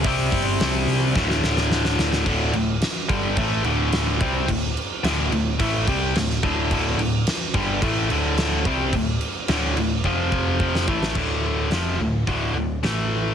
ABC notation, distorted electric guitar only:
X:1
M:4/4
L:1/8
Q:1/4=108
K:Dm
V:1 name="Distorted electric guitar" clef=bass
[C,G,C]4 [D,,A,,D,]4 | [D,,A,,D,] [D,,A,,] z [G,,D,G,] [A,,E,A,] [D,,A,,D,]2 [C,G,C] | [D,,A,,] z [D,,A,,D,] [D,,A,,] [A,,E,A,] [C,G,C] [D,,A,,] [D,,A,,D,] | [D,,A,,D,] [D,,A,,] z [G,,D,G,] [A,,E,A,] [D,,A,,D,]2 [C,G,C] |
[D,,A,,] z [D,,A,,D,] [D,,A,,] [F,,C,F,]3 [A,,E,A,] | [D,,A,,D,]2 [F,,C,F,] [D,,A,,] [D,,A,,D,] [D,,A,,] [A,,E,A,]2 |]